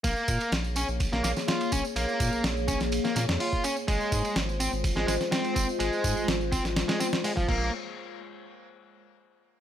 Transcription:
<<
  \new Staff \with { instrumentName = "Analog synth pad" } { \time 4/4 \key bes \minor \tempo 4 = 125 <bes aes' des''>1~ | <bes aes' des''>1 | <aes f' c''>1~ | <aes f' c''>2.~ <aes f' c''>8 r8 |
r1 | }
  \new Staff \with { instrumentName = "Distorted electric guitar" } { \time 4/4 \key bes \minor bes4 r8 des'16 r8 bes16 bes16 r16 f'8 des'16 r16 | bes4 r8 des'16 r8 bes16 bes16 r16 f'8 des'16 r16 | aes4 r8 c'16 r8 aes16 aes16 r16 c'8 c'16 r16 | aes4 r8 c'16 r8 aes16 c'16 r16 aes16 f16 bes8 |
r1 | }
  \new Staff \with { instrumentName = "Sub bass" } { \clef bass \time 4/4 \key bes \minor bes,,16 r16 bes,16 r16 bes,,8. bes,,8 bes,,16 bes,,16 r8. bes,,16 r16 | bes,,16 r16 bes,16 bes,,16 bes,,8. bes,,8 r16 bes,16 f,16 r4 | aes,,16 r16 aes,16 r16 aes,,8. aes,,8 aes,,16 aes,,16 r8. aes,,16 r16 | aes,,16 r16 aes,16 aes,,16 aes,,8. aes,,8 r4 aes,,16 bes,,8 |
r1 | }
  \new DrumStaff \with { instrumentName = "Drums" } \drummode { \time 4/4 <bd cymr tamb>16 tamb16 <bd cymr tamb>16 <cymr tamb>16 <cymr sn tamb>16 tamb16 <cymr tamb>16 tamb16 <bd cymr tamb>16 <sn tamb>16 <cymr sn tamb>16 <sn tamb>16 <cymr sn tamb>16 <cymr tamb>16 <bd cymr tamb>16 tamb16 | <cymr tamb>16 tamb16 <bd cymr tamb>16 tamb16 <cymr sn tamb>16 tamb16 <bd cymr tamb>16 <sn tamb>16 <cymr tamb>16 <sn tamb>16 <cymr sn tamb>16 <sn tamb>16 <hho tamb>16 <bd tamb>16 <cymr tamb>16 tamb16 | <bd cymr tamb>16 tamb16 <bd cymr tamb>16 <cymr tamb>16 <cymr sn tamb>16 tamb16 <cymr tamb>16 tamb16 <bd cymr tamb>16 <sn tamb>16 <cymr sn tamb>16 <sn tamb>16 <cymr sn tamb>16 <cymr tamb>16 <bd cymr tamb>16 tamb16 | <cymr tamb>16 tamb16 <bd cymr tamb>16 tamb16 <cymr sn tamb>16 tamb16 <bd cymr tamb>16 <sn tamb>16 <cymr sn tamb>16 <cymr sn tamb>16 <cymr sn tamb>16 <sn tamb>16 <hho tamb>16 <bd tamb>16 <cymc bd>8 |
r4 r4 r4 r4 | }
>>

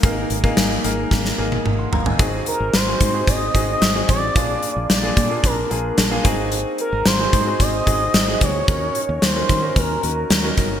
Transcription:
<<
  \new Staff \with { instrumentName = "Analog synth lead" } { \time 4/4 \key aes \mixolydian \tempo 4 = 111 r1 | r8 bes'8 c''4 ees''4. d''8~ | d''4 d''4 bes'4. r8 | r8 bes'8 c''4 ees''4. des''8~ |
des''4 c''4 bes'4. r8 | }
  \new Staff \with { instrumentName = "Grand piano" } { \time 4/4 \key aes \mixolydian << { r2. r16 <ges'' c'''>16 <f'' bes''>16 <ees'' aes''>16~ | <ees'' aes''>16 r2. r8. | r1 | r1 |
r1 | } \\ { <bes ees' aes' bes'>8 r16 <bes ees' aes' bes'>8 r16 <bes ees' aes' bes'>8. r16 <bes ees' aes' bes'>4~ <bes ees' aes' bes'>16 r16 | <c' ees' ges' aes'>4 r16 <c' ees' ges' aes'>8 <c' ees' ges' aes'>8 r16 <c' ees' ges' aes'>8 r16 <c' ees' ges' aes'>8 r16 | <bes d' f' aes'>4 r16 <bes d' f' aes'>8 <bes d' f' aes'>8 r16 <bes d' f' aes'>8 r16 <bes d' f' aes'>16 <c' ees' ges' aes'>8~ | <c' ees' ges' aes'>4 r16 <c' ees' ges' aes'>8 <c' ees' ges' aes'>8 r16 <c' ees' ges' aes'>8 r16 <c' ees' ges' aes'>8 r16 |
<des' ees' ges' bes'>4 r16 <des' ees' ges' bes'>8 <des' ees' ges' bes'>8 r16 <des' ees' ges' bes'>8 r16 <des' ees' ges' bes'>8 r16 | } >> }
  \new Staff \with { instrumentName = "String machine" } { \time 4/4 \key aes \mixolydian <aes ees' bes'>1 | r1 | r1 | r1 |
r1 | }
  \new Staff \with { instrumentName = "Fingered electric bass" } { \clef bass \time 4/4 \key aes \mixolydian aes,,8 aes,,8 aes,,8 aes,,8 aes,,8 aes,,8 aes,,8 g,,8 | aes,,8 r16 aes,,16 aes,,8 aes,8 aes,,8 aes,,8 aes,,8 a,,8 | bes,,8 r16 bes,,16 bes,,8 bes,8 bes,,8 bes,,8 bes,,8 aes,,8~ | aes,,8 r16 aes,,16 aes,,8 aes,8 aes,,8 aes,,8 aes,,8 d,8 |
ees,8 r16 ees,16 ees,8 ees8 ees,8 ees,8 ees,8 g,,8 | }
  \new DrumStaff \with { instrumentName = "Drums" } \drummode { \time 4/4 <hh bd>8 hh16 bd16 <hh sn>8 hh8 <bd sn>16 sn8 tommh16 toml8 tomfh16 tomfh16 | <hh bd>8 hh8 <hh sn>8 <hh bd>8 <hh bd>8 <hh bd>8 <hh sn>8 <hh bd>8 | <hh bd>8 hh8 <hh sn>8 <hh bd>8 <hh bd>8 hh8 <hh sn>8 <hh bd>8 | hh8 hh8 <hh sn>8 <hh bd>8 <hh bd>8 <hh bd>8 <hh sn>8 <hh bd>8 |
<hh bd>8 hh8 <hh sn>8 <hh bd>8 <hh bd>8 hh8 <hh sn>8 <hh bd>8 | }
>>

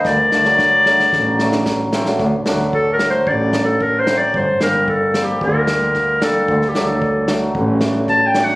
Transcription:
<<
  \new Staff \with { instrumentName = "Clarinet" } { \time 4/4 \tempo 4 = 112 d''2.~ d''8 r8 | r4 \tuplet 3/2 { a'8 bes'8 c''8 d''4 a'8 bes'8 c''8 d''8 } | c''8 bes'8 \tuplet 3/2 { a'4 g'8 } bes'4. a'8~ | \tuplet 3/2 { a'8 g'8 a'8~ } a'8 r4. \tuplet 3/2 { a''8 g''8 fis''8 } | }
  \new Staff \with { instrumentName = "Hammered dulcimer" } { \time 4/4 r8 <a d'>16 <fis a d'>16 r8 <fis a d'>16 r8. <fis a d'>16 r8. <a c'>16 <fis a d'>16 | r8 <fis a d'>16 r8. <fis a d'>16 r8. <fis a d'>16 r8. <fis a c'>16 r16 | r8 <g bes d'>16 r8. <g bes c'>16 r8. <g bes d'>16 r8. <g bes d'>16 r16 | r8 <fis a d'>16 r8. <fis a d'>16 r8. <fis a d'>16 r8. <fis a d'>16 r16 | }
  \new Staff \with { instrumentName = "Double bass" } { \clef bass \time 4/4 d,8 d,4. a,,2 | d,8 d,4. a,,2 | g,,8 g,,4. d,2 | d,8 d,4. a,,2 | }
  \new DrumStaff \with { instrumentName = "Drums" } \drummode { \time 4/4 <bd sn>8 sn16 sn16 <bd sn>8 sn16 sn16 <bd sn>8 sn16 sn16 <bd sn>8 sn16 sn16 | <bd sn>8 sn16 sn16 bd8 sn8 bd8 sn8 bd8 sn8 | bd8 sn8 bd8 sn8 bd8 sn8 <bd sn>8 sn8 | bd16 sn16 sn8 bd8 sn8 bd8 sn8 <bd sn>8 sn16 sn16 | }
>>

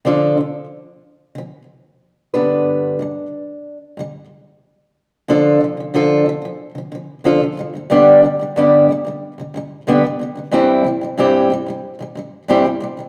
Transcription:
\new Staff \with { instrumentName = "Steel-string acoustic guitar" } { \clef bass \time 4/4 \key d \dorian \tempo 4 = 92 <d f d' f' a'>8 <d f>8 r4 <d f>8 r4 <g, d g b d' b'>8~ | <g, d g b d' b'>8 <g, d g>8 r4 <g, d g>8 r4. | <d f d' f' a'>8 d16 <d f>16 <d f d' f' a'>8 <d f>16 <d f>8 <d f>16 <d f>8 <d f d' f' a'>16 <d f>16 <g, d g>16 <g, d g>16 | <g, d g b d' g'>8 <g, d g>16 <g, d g>16 <g, d g b d' g'>8 <g, d g>16 <g, d g>8 <g, d g>16 <g, d g>8 <g, d g b d' g'>16 g,16 <g, d g>16 <g, d g>16 |
<g, e g c' e' g'>8 <g, e g>16 <g, e g>16 <g, e g c' e' g'>8 <g, e g>16 <g, e g>8 <g, e g>16 <g, e g>8 <g, e g c' e' g'>16 <g, e g>16 <g, e g>16 <g, e g>16 | }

